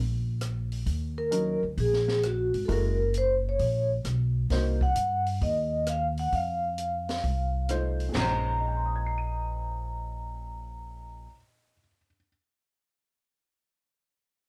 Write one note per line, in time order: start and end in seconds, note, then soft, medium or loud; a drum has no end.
0.00 0.82 A#1 medium
0.41 cross-stick medium
0.41 closed hi-hat soft
0.72 open hi-hat soft
0.86 1.58 D#2 medium
0.86 kick soft
0.86 open hi-hat soft
1.18 1.60 A#4 loud
1.31 1.59 F#3 medium
1.31 1.59 C#4 medium
1.31 1.59 D#4 medium
1.31 1.59 A#4 medium
1.31 closed hi-hat medium
1.63 1.76 D2 medium
1.77 2.50 A#1 medium
1.77 2.21 G#4 medium
1.77 kick soft
1.77 open hi-hat soft
1.93 snare soft
2.08 snare soft
2.23 2.63 F#4 medium
2.23 cross-stick medium
2.23 closed hi-hat medium
2.54 2.68 G#1 medium
2.54 open hi-hat soft
2.65 3.56 F#1 medium
2.65 2.96 G#3 medium
2.65 2.96 E4 medium
2.65 2.96 F#4 medium
2.65 2.69 A4 medium
2.65 2.96 A#4 medium
2.65 kick soft
2.65 open hi-hat soft
2.72 3.13 A#4 medium
3.14 3.31 C5 loud
3.14 closed hi-hat soft
3.49 3.89 C#5 loud
3.59 4.02 A#1 medium
3.59 kick soft
3.59 open hi-hat soft
4.05 4.47 B1 medium
4.05 cross-stick medium
4.05 closed hi-hat soft
4.50 4.93 C2 medium
4.50 4.78 A#3 medium
4.50 4.79 D#4 medium
4.50 4.79 F#4 medium
4.50 4.79 C5 medium
4.50 kick soft
4.50 snare soft
4.50 open hi-hat soft
4.81 5.24 F#5 loud
4.81 kick soft
4.95 5.38 G2 medium
4.95 closed hi-hat medium
5.26 open hi-hat soft
5.41 6.28 D#2 medium
5.41 5.85 D#5 medium
5.41 kick soft
5.41 open hi-hat soft
5.86 6.03 F5 medium
5.86 cross-stick medium
5.86 closed hi-hat soft
6.17 6.34 F#5 medium
6.17 open hi-hat soft
6.32 7.20 F2 medium
6.32 7.66 F5 medium
6.32 kick soft
6.32 open hi-hat soft
6.78 closed hi-hat soft
7.09 snare soft
7.09 open hi-hat soft
7.24 8.11 C2 medium
7.24 kick soft
7.24 open hi-hat soft
7.69 8.15 A3 medium
7.69 8.15 D#4 medium
7.69 8.15 F4 medium
7.69 8.15 C5 medium
7.69 cross-stick medium
7.69 closed hi-hat medium
8.00 open hi-hat soft
8.09 11.23 A#2 medium
8.09 11.26 G#3 medium
8.15 11.25 A#1 medium
8.15 11.29 C#4 medium
8.15 11.32 D#4 medium
8.15 11.26 A#5 medium
8.15 snare medium
8.15 floor tom medium
8.15 china medium
8.21 11.35 C5 medium
8.61 11.71 D#5 soft
8.68 11.78 G#5 soft
8.77 11.87 C6 soft
8.86 11.96 D#6 soft
8.96 12.06 G#6 soft
9.06 12.17 C7 soft
9.18 12.28 D#7 soft